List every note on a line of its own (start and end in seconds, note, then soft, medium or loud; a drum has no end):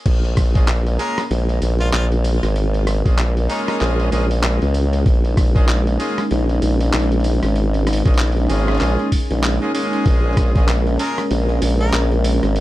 0.06 0.98 A#1 medium
0.06 12.60 G#3 medium
0.06 12.60 C#4 medium
0.06 5.05 A#4 medium
0.06 kick loud
0.06 open hi-hat soft
0.06 crash medium
0.24 open hi-hat soft
0.37 kick loud
0.37 cross-stick medium
0.37 open hi-hat medium
0.55 0.66 G#3 medium
0.55 0.66 A#3 medium
0.55 0.66 C#4 medium
0.55 0.66 F4 medium
0.55 0.66 G#4 medium
0.55 kick loud
0.55 open hi-hat soft
0.68 clap loud
0.68 open hi-hat soft
0.87 open hi-hat soft
0.99 1.22 G#3 medium
0.99 1.22 A#3 medium
0.99 1.22 C#4 medium
0.99 1.22 F4 medium
0.99 1.22 G#4 medium
0.99 1.22 A#4 medium
0.99 open hi-hat medium
1.18 cross-stick medium
1.18 open hi-hat soft
1.31 1.60 A#1 medium
1.31 open hi-hat soft
1.49 open hi-hat soft
1.62 1.91 A#1 loud
1.62 open hi-hat medium
1.80 1.89 F4 medium
1.80 open hi-hat soft
1.93 2.40 A#1 loud
1.93 2.05 F4 medium
1.93 clap loud
1.93 open hi-hat soft
2.12 open hi-hat soft
2.24 open hi-hat medium
2.43 3.02 G#1 medium
2.43 cross-stick soft
2.43 open hi-hat soft
2.56 open hi-hat soft
2.74 open hi-hat soft
2.87 cross-stick medium
2.87 open hi-hat medium
3.05 3.48 A#1 loud
3.05 3.16 G#3 medium
3.05 3.16 A#3 medium
3.05 3.16 C#4 medium
3.05 3.16 F4 medium
3.05 3.16 G#4 medium
3.05 kick loud
3.05 open hi-hat soft
3.18 clap loud
3.18 open hi-hat soft
3.37 open hi-hat soft
3.49 4.09 G#3 medium
3.49 4.09 A#3 medium
3.49 4.09 C#4 medium
3.49 3.61 D#4 medium
3.49 4.09 F4 medium
3.49 4.09 G#4 loud
3.49 open hi-hat medium
3.68 3.76 D#4 medium
3.68 cross-stick medium
3.68 open hi-hat soft
3.81 4.10 A#1 loud
3.81 clap medium
3.81 open hi-hat soft
4.00 open hi-hat soft
4.12 4.59 A#1 loud
4.12 4.27 G#3 medium
4.12 4.27 A#3 medium
4.12 4.27 C#4 medium
4.12 4.27 F4 medium
4.12 4.27 G#4 loud
4.12 open hi-hat medium
4.31 open hi-hat soft
4.43 clap loud
4.43 open hi-hat soft
4.62 5.04 C#2 loud
4.62 open hi-hat soft
4.74 open hi-hat medium
4.93 open hi-hat soft
5.06 5.98 A#1 medium
5.06 10.05 D#4 medium
5.06 kick loud
5.06 open hi-hat soft
5.25 open hi-hat soft
5.37 kick loud
5.37 cross-stick medium
5.37 open hi-hat medium
5.55 5.66 G#3 medium
5.55 5.66 A#3 medium
5.55 5.66 C#4 medium
5.55 5.66 F4 medium
5.55 5.66 G#4 loud
5.55 kick loud
5.55 open hi-hat soft
5.68 clap loud
5.68 open hi-hat soft
5.87 open hi-hat soft
5.99 6.22 G#3 medium
5.99 6.22 A#3 medium
5.99 6.22 C#4 medium
5.99 6.22 F4 medium
5.99 6.22 G#4 medium
5.99 open hi-hat medium
6.18 cross-stick medium
6.18 open hi-hat soft
6.31 6.60 A#1 loud
6.31 open hi-hat soft
6.49 open hi-hat soft
6.62 6.91 A#1 loud
6.62 open hi-hat medium
6.81 open hi-hat soft
6.93 7.40 A#1 medium
6.93 clap loud
6.93 open hi-hat soft
6.99 open hi-hat soft
7.04 open hi-hat soft
7.12 open hi-hat soft
7.14 open hi-hat soft
7.20 open hi-hat soft
7.24 open hi-hat medium
7.43 8.03 G#1 medium
7.43 cross-stick soft
7.43 open hi-hat soft
7.56 open hi-hat soft
7.74 open hi-hat soft
7.87 cross-stick medium
7.87 open hi-hat medium
7.93 open hi-hat medium
7.97 open hi-hat soft
8.05 8.47 A#1 loud
8.05 8.16 G#3 medium
8.05 8.16 A#3 medium
8.05 8.16 C#4 medium
8.05 8.16 F4 medium
8.05 8.16 G#4 medium
8.05 kick loud
8.05 open hi-hat soft
8.08 open hi-hat soft
8.14 open hi-hat soft
8.18 clap loud
8.18 open hi-hat soft
8.23 open hi-hat soft
8.27 open hi-hat soft
8.32 open hi-hat soft
8.37 open hi-hat soft
8.40 open hi-hat soft
8.43 open hi-hat soft
8.46 9.09 G#3 medium
8.46 9.09 A#3 medium
8.46 9.09 C#4 medium
8.46 9.09 F4 medium
8.46 9.09 G#4 loud
8.46 open hi-hat soft
8.50 8.79 G#1 loud
8.50 open hi-hat medium
8.68 cross-stick medium
8.68 open hi-hat soft
8.71 open hi-hat soft
8.75 open hi-hat soft
8.78 clap medium
8.78 open hi-hat soft
8.81 8.96 A#1 loud
8.81 open hi-hat soft
8.99 open hi-hat soft
9.12 kick medium
9.12 open hi-hat medium
9.31 9.59 A#1 loud
9.31 open hi-hat soft
9.43 clap loud
9.43 open hi-hat soft
9.62 9.72 G#3 medium
9.62 9.73 A#3 medium
9.62 9.73 C#4 medium
9.62 9.73 F4 medium
9.62 9.72 G#4 medium
9.62 open hi-hat soft
9.74 10.51 G#3 loud
9.74 10.51 A#3 medium
9.74 10.51 C#4 medium
9.74 10.51 F4 medium
9.74 10.51 G#4 loud
9.74 open hi-hat medium
9.93 open hi-hat soft
10.06 10.97 A#1 medium
10.06 12.60 A#4 medium
10.06 kick loud
10.06 open hi-hat soft
10.24 open hi-hat soft
10.33 open hi-hat soft
10.37 kick loud
10.37 cross-stick medium
10.37 open hi-hat medium
10.43 open hi-hat soft
10.55 10.66 G#3 medium
10.55 10.66 A#3 medium
10.55 10.66 C#4 medium
10.55 10.66 F4 medium
10.55 10.66 G#4 medium
10.55 kick loud
10.55 open hi-hat soft
10.68 clap loud
10.68 open hi-hat soft
10.87 open hi-hat soft
10.99 11.22 G#3 medium
10.99 11.22 A#3 medium
10.99 11.22 C#4 medium
10.99 11.22 F4 medium
10.99 11.22 G#4 medium
10.99 11.22 A#4 medium
10.99 open hi-hat medium
11.18 cross-stick medium
11.18 open hi-hat soft
11.31 11.60 A#1 medium
11.31 open hi-hat soft
11.49 open hi-hat soft
11.62 11.91 A#1 loud
11.62 open hi-hat medium
11.80 11.99 A#4 medium
11.80 open hi-hat soft
11.93 12.40 A#1 medium
11.93 clap loud
11.93 open hi-hat soft
12.12 open hi-hat soft
12.24 open hi-hat medium
12.43 12.60 G#1 loud
12.43 cross-stick soft
12.43 open hi-hat soft
12.56 open hi-hat soft